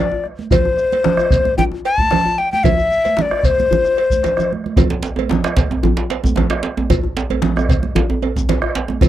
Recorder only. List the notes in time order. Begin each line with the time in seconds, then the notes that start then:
Already playing: D5
0.52 C5
1.58 G5
1.85 A5
2.38 G5
2.52 G5
2.64 E5
3.17 E5
3.22 D5
3.46 C5